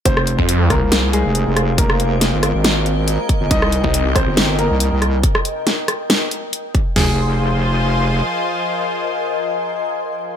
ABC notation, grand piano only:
X:1
M:4/4
L:1/8
Q:"Swing 16ths" 1/4=139
K:Fm
V:1 name="Grand piano"
[Cc]3 [B,B]2 [A,A]3 | [B,B]8 | [Ee]3 [Cc]2 [B,B]3 | z8 |
A8- | A8 |]